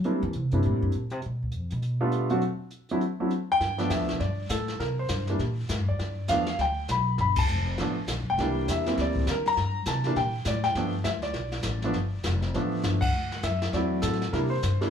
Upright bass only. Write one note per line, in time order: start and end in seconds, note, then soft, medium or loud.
0.06 0.22 G3 loud
0.23 0.34 E3 loud
0.35 0.52 C3 medium
0.52 0.63 G2 medium
0.66 0.82 A2 medium
0.82 0.93 G2 medium
0.95 1.11 A#2 medium
1.11 1.23 C3 loud
1.26 1.42 B2 medium
1.43 1.56 D2 medium
1.56 1.71 F2 medium
1.72 2.39 B2 loud
3.60 3.89 G2 medium
3.90 4.00 F2 medium
4.00 4.11 D2 medium
4.11 4.19 B1 medium
4.20 4.49 G2 medium
4.50 4.79 A2 medium
4.80 5.09 C3 medium
5.09 5.38 G2 medium
5.39 5.68 A#2 medium
5.69 5.78 A2 medium
5.78 5.89 G2 medium
5.90 5.99 E2 medium
5.99 6.28 G2 medium
6.29 6.58 E2 medium
6.59 6.88 D2 medium
6.89 7.18 B1 medium
7.18 7.48 G1 medium
7.49 7.77 F1 medium
7.78 8.07 A1 medium
8.08 8.21 B1 medium
8.19 8.29 G1 medium
8.29 8.37 F1 medium
8.37 8.67 C2 medium
8.68 8.97 E2 medium
8.97 9.27 D2 medium
9.27 9.56 D3 medium
9.57 9.86 G2 medium
9.86 10.15 C3 medium
10.16 10.45 A#2 medium
10.45 10.74 A2 medium
10.75 11.04 G2 medium
11.05 11.33 D2 medium
11.34 11.63 B1 medium
11.64 11.93 A1 loud
11.93 12.23 G1 medium
12.24 12.53 F1 medium
12.54 12.83 A1 medium
12.83 13.13 G1 medium
13.13 13.42 D2 medium
13.43 13.72 F#2 medium
13.73 14.02 E2 medium
14.03 14.32 A2 medium
14.33 14.62 C3 medium
14.63 14.90 G2 medium